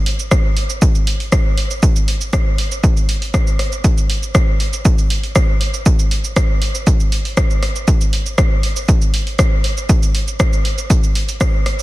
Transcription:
0.06 open hi-hat
0.19 shaker
0.31 kick, cross-stick, shaker
0.57 open hi-hat
0.70 shaker
0.82 kick, shaker
0.95 shaker
1.07 open hi-hat
1.20 open hi-hat
1.32 kick, cross-stick, shaker
1.58 open hi-hat
1.71 shaker
1.83 kick, shaker
1.96 shaker
2.08 open hi-hat
2.21 shaker
2.33 kick, cross-stick, shaker
2.58 open hi-hat
2.72 shaker
2.84 kick, shaker
2.97 shaker
3.09 open hi-hat
3.22 open hi-hat
3.34 kick, cross-stick, shaker
3.47 shaker
3.59 cross-stick, open hi-hat
3.72 shaker
3.84 kick, shaker
3.98 shaker
4.10 open hi-hat
4.23 shaker
4.35 kick, cross-stick, shaker
4.60 open hi-hat
4.73 shaker
4.85 kick, shaker
4.98 shaker
5.10 open hi-hat
5.23 open hi-hat
5.36 kick, cross-stick, shaker
5.61 open hi-hat
5.74 shaker
5.86 kick, shaker
5.99 shaker
6.11 open hi-hat
6.24 shaker
6.36 kick, cross-stick, shaker
6.62 open hi-hat
6.75 shaker
6.87 kick, shaker
7.00 shaker
7.12 open hi-hat
7.25 open hi-hat
7.37 kick, cross-stick, shaker
7.50 shaker
7.63 cross-stick, open hi-hat
7.76 shaker
7.88 kick, shaker
8.01 shaker
8.13 open hi-hat
8.26 shaker
8.38 kick, cross-stick, shaker
8.63 open hi-hat
8.76 shaker
8.88 kick, shaker
9.02 shaker
9.14 open hi-hat
9.27 open hi-hat
9.39 kick, cross-stick, shaker
9.64 open hi-hat
9.77 shaker
9.89 kick, shaker
10.03 shaker
10.15 open hi-hat
10.28 shaker
10.40 kick, cross-stick, shaker
10.53 shaker
10.65 open hi-hat
10.78 shaker
10.90 kick, shaker
11.03 shaker
11.15 open hi-hat
11.29 open hi-hat, shaker
11.41 kick, cross-stick, shaker
11.66 cross-stick, open hi-hat
11.79 shaker

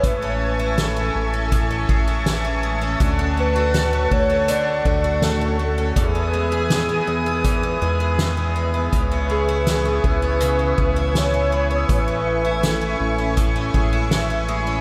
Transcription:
Already playing: E3 G#3 B3 E4 E5
0.03 A1 A2 B4 G#5 A5 C#6, kick, closed hi-hat
0.22 C#4
0.59 E4
0.78 E3 A4, snare, closed hi-hat
0.97 C#4
1.15 A1
1.34 C#4
1.52 A2, kick, closed hi-hat
1.71 C#4
1.89 A1 G#3, kick
2.08 E4
2.26 E3, snare, closed hi-hat
2.45 C#4
2.63 G#3
2.82 C#4
3.00 D2 D3 A4 F#5, kick, closed hi-hat
3.19 C#4
3.37 A3 B4
3.56 F#4
3.74 A3, snare, closed hi-hat
3.93 C#4
4.11 D2 A3 C#5, kick
4.30 C#4
4.48 D3 D5, closed hi-hat
4.85 D2 A3, kick
5.04 F#4
5.22 A3 A4, snare, closed hi-hat
5.41 C#4
5.59 A3
5.78 C#4
5.96 E2 G#4 B4 E5 G#5 D#6, kick, closed hi-hat
6.15 B3
6.33 G#3
6.52 G#4
6.70 D#3, snare, closed hi-hat
6.89 B3
7.07 E2 G#3
7.26 B3
7.44 E2, kick, closed hi-hat
7.63 B3
7.82 E2 G#3
8.00 G#4
8.19 D#3, snare, closed hi-hat
8.37 B3
8.56 G#3
8.74 B3
8.93 C#2 C#3 G#5 C#6, kick, closed hi-hat
9.12 B3
9.30 G#3 G#4 G#5
9.49 E4
9.67 E3, snare, closed hi-hat
9.85 B3
10.04 C#2 G#3 B4, kick
10.22 B3
10.41 C#3, closed hi-hat
10.59 B3
10.78 C#2 G#3, kick
10.96 E4
11.15 E3 C#5, snare, closed hi-hat
11.34 B3
11.52 G#3 B5
11.71 B3
11.76 D#6
11.89 A1 A2 E4 B4, kick, closed hi-hat
12.00 E6
12.08 C#4
12.27 E5
12.45 E4
12.51 G#5
12.63 E3 A4, snare, closed hi-hat
12.81 C#4
13.00 A1
13.18 C#4
13.37 A2, kick, closed hi-hat
13.56 C#4
13.74 A1 G#3, kick
13.93 E4
14.11 E3, snare, closed hi-hat
14.30 C#4
14.48 G#3
14.67 C#4

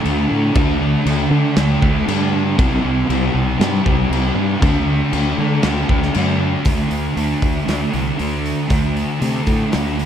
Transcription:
0.02 D2 D3 A3 D4, crash
0.28 A2 A3 D4
0.52 D2 D3 A3 D4, kick, crash
0.79 A3 D4
1.04 D2 D3 A3 D4, crash
1.30 D3 A3 D4
1.56 D2 D3 A3 D4, snare, crash
1.81 D2 D3 A3 D4, kick
2.06 G2 D3 A3 D4, crash
2.34 A3 D4
2.57 C2 C3 G3 C4, kick, crash
2.82 C2 G3 C4
3.08 C2 C3 G3 C4, crash
3.33 C2 G3 C4
3.58 G2 C3 G3 C4, snare, crash
3.83 C2 C3 G3 C4, kick
4.09 C2 C3 G3 C4, crash
4.34 G2 G3 C4
4.60 D2 D3 A3 D4, kick, crash
4.86 A3 D4
5.12 D2 D3 A3 D4, crash
5.38 D3 A3 D4
5.63 D2 D3 A3 D4, snare, crash
5.89 D2 D3 A3 D4, kick
6.03 snare
6.14 F#2 D3 A3 D4, crash
6.40 A3 D4
6.64 D2 D3 A3 D4, kick, open hi-hat
6.91 D2, open hi-hat
7.15 D2 D3 A3 D4, open hi-hat
7.42 D2, kick, open hi-hat
7.65 D2 D3 A3 D4, snare, open hi-hat
7.90 C2 A3 D4, open hi-hat
8.17 D2 D3 A3 D4, open hi-hat
8.46 open hi-hat
8.68 D2 D3 A3 D4, kick, open hi-hat
8.97 open hi-hat
9.20 C3 D3 A3 D4, open hi-hat
9.47 A2, kick, open hi-hat
9.72 D2 D3 A3 D4, snare, open hi-hat
9.98 A3 D4, open hi-hat

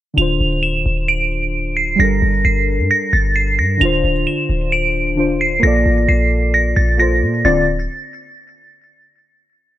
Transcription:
0.14 D1 D3 D4 F7
0.19 F4 C5
0.40 D1
0.63 E7
0.86 D1
1.08 D7
1.77 C7
1.96 G1 G3 D4
2.00 A4 A#4 A#6
2.22 G1
2.45 G1 C7
2.79 G2
2.91 A#6
3.13 G1 A6
3.36 C7
3.59 G2 A#6
3.77 D1 D3 D4 F7
3.82 F4 C5
4.04 D1
4.27 E7
4.49 D1
4.72 D7
5.16 D3 D4 F4 C5
5.41 C7
5.59 A#1 A#3 F4 A#6
5.64 A4 D5
5.86 A1
6.08 A#1 C7
6.54 A#6
6.76 A#1 A6
6.97 A#3 F4 A4 C5 A#6
7.22 A#2
7.45 D1 D3 C4 F4 D5 A6

